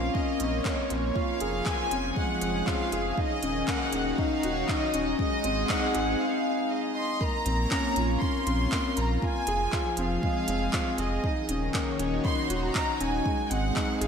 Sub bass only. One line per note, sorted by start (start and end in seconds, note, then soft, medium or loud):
0.00 0.10 A#1 medium
0.40 0.61 A#1 medium
0.91 1.11 A#1 loud
1.41 1.62 F1 medium
1.92 2.12 F1 medium
2.42 2.62 F1 loud
2.92 3.13 F1 loud
3.43 3.63 D#1 loud
3.93 4.14 D#1 medium
4.44 4.64 D#1 loud
4.94 5.15 D#1 loud
5.45 5.65 G#1 loud
5.95 6.16 G#1 medium
7.46 7.67 A#1 loud
7.97 8.17 A#1 medium
8.47 8.67 A#1 loud
8.98 9.18 A#1 loud
9.47 9.68 F1 loud
9.98 10.19 F1 medium
10.48 10.69 F1 loud
10.99 11.19 F1 loud
11.49 11.70 D#1 loud
11.99 12.20 D#1 medium
12.50 12.71 D#1 loud
13.01 13.21 D#1 loud
13.51 13.72 G#1 loud
14.01 14.08 G#1 medium